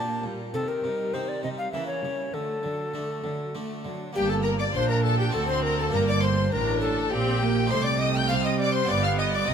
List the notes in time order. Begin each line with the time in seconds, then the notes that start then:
Already playing: A#2 A#3 D4 G4 A#4 A5
0.24 A#2 G3 A#3 G4
0.53 C3 D#3 C4 G4 A4
0.68 A#4
0.83 C3 G3 D#4
1.13 C3 D#3 C4 D#4 G4 C5
1.28 D5
1.42 C3 G3 D#4 D#5
1.58 F5
1.72 C#3 E3 A#3 C#4 E4 E5
1.87 C#5
2.03 C#3 G3 C#4 E4
2.32 D3 A3 F#4 A4
2.62 D3 F#3 D4
2.93 D3 A3 D4 F#4
3.23 D3 F#3 D4
3.53 D3 A3 D4 F#4
3.84 D3 F#3 D4
4.13 G1 G2 A#3 D4 G4 G5
4.29 A4 A5
4.43 A#4 A#5
4.59 D5 D6
4.73 A#1 A#2 D4 C5 C6
4.89 A#4 A#5
5.03 A4 A5
5.19 G4 G5
5.30 C4 D4 F#4 A4 A5
5.34 D2 A4
5.47 C5 C6
5.63 A#4 A#5
5.79 A4 A5
5.89 A#3 D4 G4 A#4
5.93 G1 G2 A#3 A#4 A#5
6.08 D5 D6
6.22 C5 C6
6.52 A1 A2 D4 A#4 A#5
6.81 A4 A5
7.10 A#1 A#2 C4 G4 G5
7.41 A#3
7.66 C4 D#4 G4
7.70 C2 C3 A3 C5 C6
7.84 D5 D6
7.99 D#5 D#6
8.13 G5 G6
8.28 C3 G3 C4 F5 F6
8.44 D#5 D#6
8.59 D5 D6
8.73 C5 C6
8.84 B3 F4 G4
8.88 G1 G2 B3 D5 D6
9.03 F5 F6
9.19 D#5 D#6
9.33 D5 D6
9.43 C4 D#4 G4
9.48 C2 C3 C4 D#5 D#6